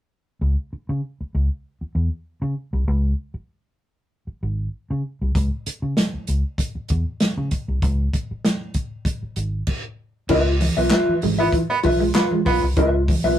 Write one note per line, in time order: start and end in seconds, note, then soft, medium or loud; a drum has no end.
0.41 0.54 C#2 loud
0.73 muted fingered electric bass stroke soft
0.89 1.00 C#3 medium
1.21 muted fingered electric bass stroke soft
1.35 1.47 C#2 medium
1.81 muted fingered electric bass stroke soft
1.95 2.08 E2 medium
2.42 2.53 C#3 medium
2.73 2.84 C2 medium
2.88 3.12 C#2 loud
3.34 muted fingered electric bass stroke soft
4.27 muted fingered electric bass stroke soft
4.43 4.67 G#1 medium
4.91 5.02 C#3 medium
5.22 5.32 C2 medium
5.35 5.48 C#2 loud
5.35 kick loud
5.35 closed hi-hat medium
5.66 muted fingered electric bass stroke soft
5.66 closed hi-hat medium
5.82 5.94 C#3 medium
5.97 snare loud
5.97 closed hi-hat medium
6.14 muted fingered electric bass stroke soft
6.27 6.41 C#2 medium
6.27 closed hi-hat medium
6.58 kick medium
6.58 closed hi-hat medium
6.75 muted fingered electric bass stroke soft
6.89 7.03 E2 medium
6.89 kick medium
6.89 closed hi-hat medium
7.20 snare medium
7.20 closed hi-hat medium
7.38 7.49 C#3 medium
7.51 kick medium
7.51 closed hi-hat medium
7.68 7.80 C2 medium
7.82 8.07 C#2 loud
7.82 kick loud
7.82 closed hi-hat medium
8.13 kick medium
8.13 closed hi-hat medium
8.31 muted fingered electric bass stroke soft
8.45 snare loud
8.45 closed hi-hat medium
8.74 kick medium
8.74 closed hi-hat medium
9.05 kick loud
9.05 closed hi-hat medium
9.23 muted fingered electric bass stroke soft
9.36 9.61 G#1 medium
9.36 closed hi-hat medium
9.67 kick medium
9.67 crash medium
10.29 10.67 C#2 loud
10.29 10.42 C#4 medium
10.29 10.51 F4 medium
10.29 10.46 B4 medium
10.29 10.45 E5 medium
10.29 kick loud
10.29 crash medium
10.29 muted conga soft
10.46 muted clean electric guitar stroke soft
10.60 muted clean electric guitar stroke soft
10.60 open hi-hat medium
10.60 muted conga soft
10.60 high conga medium
10.77 10.89 B1 medium
10.77 10.88 B3 medium
10.77 10.89 F4 soft
10.77 10.90 B4 soft
10.77 10.91 E5 soft
10.91 11.12 F4 loud
10.91 11.13 B4 medium
10.91 11.13 E5 medium
10.91 snare loud
10.91 clap medium
10.91 closed hi-hat loud
11.08 muted fingered electric bass stroke soft
11.08 high conga medium
11.22 11.47 G#1 medium
11.22 11.36 G#3 medium
11.22 muted clean electric guitar stroke soft
11.22 open hi-hat medium
11.22 muted conga soft
11.22 high conga medium
11.22 low conga medium
11.39 11.50 E3 medium
11.39 11.49 B3 medium
11.39 11.55 F4 soft
11.39 11.54 B4 soft
11.39 11.54 E5 medium
11.52 11.66 E3 medium
11.52 kick loud
11.52 closed hi-hat medium
11.70 11.79 B3 loud
11.70 muted clean electric guitar stroke soft
11.83 12.09 B1 medium
11.83 12.05 F4 medium
11.83 12.01 B4 medium
11.83 12.00 E5 medium
11.83 muted clean electric guitar stroke soft
11.83 kick medium
11.83 open hi-hat medium
11.83 muted conga soft
11.83 high conga medium
12.00 12.12 G#3 medium
12.00 muted clean electric guitar stroke soft
12.14 12.26 B3 medium
12.14 12.36 F4 medium
12.14 12.31 B4 medium
12.14 12.31 F5 loud
12.14 muted clean electric guitar stroke soft
12.14 snare loud
12.14 clap medium
12.14 closed hi-hat medium
12.31 12.43 G#3 medium
12.31 muted clean electric guitar stroke soft
12.31 high conga medium
12.45 12.59 B1 medium
12.45 12.66 B3 loud
12.45 12.59 B3 medium
12.45 12.62 F4 medium
12.45 12.62 B4 medium
12.45 12.62 F5 medium
12.45 kick medium
12.45 open hi-hat medium
12.45 muted conga soft
12.45 low conga medium
12.62 12.74 C2 medium
12.62 muted clean electric guitar stroke soft
12.76 13.14 C#2 loud
12.76 12.90 C#4 medium
12.76 12.98 F4 medium
12.76 12.94 B4 medium
12.76 12.92 E5 loud
12.76 kick loud
12.76 closed hi-hat medium
12.76 muted conga soft
12.94 muted clean electric guitar stroke soft
13.08 muted clean electric guitar stroke soft
13.08 kick loud
13.08 open hi-hat medium
13.08 muted conga soft
13.08 high conga medium
13.24 13.36 B1 medium
13.24 13.36 B3 medium
13.24 13.38 F4 soft
13.24 13.39 B4 medium
13.24 13.39 E5 medium